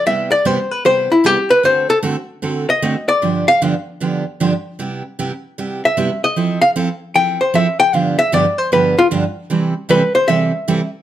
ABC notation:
X:1
M:4/4
L:1/8
Q:"Swing" 1/4=153
K:C
V:1 name="Hollow-body jazz guitar"
e d c B c E G B | c A z3 _e2 d- | d f z6 | z4 z e2 _e- |
_e f z2 g c =e g | f e d c B F z2 | z2 B c e3 z |]
V:2 name="Steel-string acoustic guitar"
[C,G,B,EG] z [C,G,B,EG] z [C,G,B,EG] z [C,G,B,EG] z | [D,A,C^FA] z [D,A,CFA] z [D,A,CFA] z [D,A,CFA] z | [G,,D,F,B,DG] z [G,,D,F,B,DG] z [G,,D,F,B,DG] z [G,,D,F,B,DG] z | [C,G,B,EG] z [C,G,B,EG] z [C,G,B,EG] z [C,G,B,EG] z |
[F,CEA] z [F,CEA] z [F,CEA] z [F,CEA] z | [G,,D,F,B,DG] z [G,,D,F,B,DG] z [G,,D,F,B,DG] z [G,,D,F,B,DG] z | [C,E,G,CEA] z [C,E,G,CEA] z [C,E,G,CEA] z [C,E,G,CEA] z |]